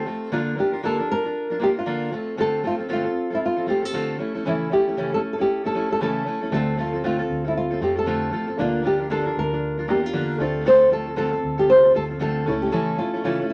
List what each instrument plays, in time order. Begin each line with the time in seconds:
0.06 steel-string acoustic guitar A3 C4 F4 A4
0.32 steel-string acoustic guitar D3 A#3 D4 F4 A#4, nylon-string guitar F4
0.57 steel-string acoustic guitar A#3 D4 F4 A#4, nylon-string guitar G4
0.72 steel-string acoustic guitar D4 F4 A#4
0.83 steel-string acoustic guitar D3 A#3 D4 F4 A#4, nylon-string guitar A4
0.99 steel-string acoustic guitar D4 F4 A#4
1.12 nylon-string guitar A#4
1.24 steel-string acoustic guitar D4 F4 A#4
1.50 steel-string acoustic guitar D4 F4 A#4
1.59 steel-string acoustic guitar A#3 D4 F4 A#4, nylon-string guitar G4
1.76 steel-string acoustic guitar D4 F4 A#4, nylon-string guitar F4
1.86 steel-string acoustic guitar D3 A#3 D4 F4 A#4
2.12 steel-string acoustic guitar A3 C4 F4 A4
2.37 steel-string acoustic guitar D3 A3 C4 F4 A4, nylon-string guitar A4
2.63 steel-string acoustic guitar A3 C4 F4 A4, nylon-string guitar F4
2.78 steel-string acoustic guitar C4 F4 A4
2.88 steel-string acoustic guitar D3 A3 C4 F4 A4
2.93 nylon-string guitar F4
3.04 steel-string acoustic guitar C4 F4 A4
3.30 steel-string acoustic guitar C4 F4 A4
3.35 nylon-string guitar E4
3.46 nylon-string guitar F4
3.57 steel-string acoustic guitar C4 F4 A4
3.66 steel-string acoustic guitar A3 C4 F4 A4, nylon-string guitar G4
3.82 steel-string acoustic guitar C4 F4 A4, nylon-string guitar A4
3.93 steel-string acoustic guitar D3 A3 C4 F4 A4
4.19 steel-string acoustic guitar A3 C#4 E4 A4
4.34 steel-string acoustic guitar A3 C#4 E4 A4
4.45 steel-string acoustic guitar C#3 E3 A3 C#4 E4 A4, nylon-string guitar E4
4.71 steel-string acoustic guitar A3 C#4 E4 A4, nylon-string guitar G4
4.87 steel-string acoustic guitar A3 C#4 E4 A4
4.97 steel-string acoustic guitar C#3 E3 A3 C#4 E4 A4
5.12 steel-string acoustic guitar A3 C#4 E4 A4, nylon-string guitar A4
5.33 nylon-string guitar A4
5.38 steel-string acoustic guitar A3 C#4 E4 A4, nylon-string guitar G4
5.64 steel-string acoustic guitar A3 C#4 E4 A4, nylon-string guitar A4
5.75 steel-string acoustic guitar A3 C#4 E4 A4
5.90 steel-string acoustic guitar A3 C#4 E4 A4, nylon-string guitar A4
6.00 steel-string acoustic guitar C#3 E3 A3 C#4 E4 A4, nylon-string guitar A4
6.26 steel-string acoustic guitar A3 C#4 E4 A4
6.41 steel-string acoustic guitar A3 C#4 E4 A4
6.50 fingered electric bass D2, steel-string acoustic guitar D3 A3 C4 F4 A4, felt piano A3 D4 F4 C5
6.54 nylon-string guitar A4
6.77 steel-string acoustic guitar A3 C4 F4 A4, nylon-string guitar F4
6.93 steel-string acoustic guitar C4 F4 A4
7.04 steel-string acoustic guitar D3 A3 C4 F4 A4, nylon-string guitar F4
7.19 steel-string acoustic guitar C4 F4 A4
7.30 fingered electric bass D2
7.44 steel-string acoustic guitar C4 F4 A4, nylon-string guitar E4
7.57 nylon-string guitar F4
7.71 steel-string acoustic guitar C4 F4 A4
7.81 fingered electric bass F2, steel-string acoustic guitar A3 C4 F4 A4, nylon-string guitar G4
7.95 steel-string acoustic guitar C4 F4 A4, nylon-string guitar A4
8.06 steel-string acoustic guitar D3 A3 C4 F4 A4
8.32 fingered electric bass A1, steel-string acoustic guitar A3 C4 F4 A4
8.47 steel-string acoustic guitar C4 F4 A4
8.57 fingered electric bass D2, steel-string acoustic guitar D3 A#3 D4 F4 A#4, felt piano A#3 D4 F4, nylon-string guitar F4
8.61 felt piano D5
8.84 steel-string acoustic guitar A#3 D4 F4 A#4, nylon-string guitar G4
8.99 steel-string acoustic guitar D4 F4 A#4
9.10 steel-string acoustic guitar D3 A#3 D4 F4 A#4, nylon-string guitar A4
9.25 steel-string acoustic guitar D4 F4 A#4
9.37 fingered electric bass D2, nylon-string guitar A#4
9.51 steel-string acoustic guitar D4 F4 A#4
9.78 steel-string acoustic guitar D4 F4 A#4
9.88 fingered electric bass E2, steel-string acoustic guitar A#3 D4 F4 A#4, nylon-string guitar G4
10.03 steel-string acoustic guitar D4 F4 A#4, nylon-string guitar F4
10.13 steel-string acoustic guitar D3 A#3 D4 F4 A#4
10.38 fingered electric bass D2, felt piano A3 D4 F4, steel-string acoustic guitar A3 C4 F4 A4
10.42 felt piano C5
10.65 steel-string acoustic guitar D3 A3 C4 F4 A4, nylon-string guitar C5
10.90 steel-string acoustic guitar A3 C4 F4 A4, nylon-string guitar A4
11.06 steel-string acoustic guitar C4 F4 A4
11.16 steel-string acoustic guitar D3 A3 C4 F4 A4, nylon-string guitar A4
11.31 steel-string acoustic guitar C4 F4 A4
11.43 fingered electric bass D2
11.58 steel-string acoustic guitar C4 F4 A4, nylon-string guitar G4
11.70 nylon-string guitar C5
11.83 steel-string acoustic guitar C4 F4 A4
11.94 fingered electric bass D2, steel-string acoustic guitar A3 C4 F4 A4, nylon-string guitar A4
12.09 steel-string acoustic guitar C4 F4 A4
12.19 steel-string acoustic guitar D3 A3 C4 F4 A4, nylon-string guitar A4
12.45 fingered electric bass C#2, felt piano A3 C#4 E4, steel-string acoustic guitar A3 C#4 E4 A4
12.49 felt piano C#5
12.62 nylon-string guitar G4
12.72 steel-string acoustic guitar C#3 E3 A3 C#4 E4 A4, nylon-string guitar A4
12.98 steel-string acoustic guitar A3 C#4 E4 A4, nylon-string guitar F4
13.14 steel-string acoustic guitar A3 C#4 E4 A4
13.24 steel-string acoustic guitar C#3 E3 A3 C#4 E4 A4, nylon-string guitar F4
13.40 steel-string acoustic guitar A3 C#4 E4 A4
13.50 nylon-string guitar E4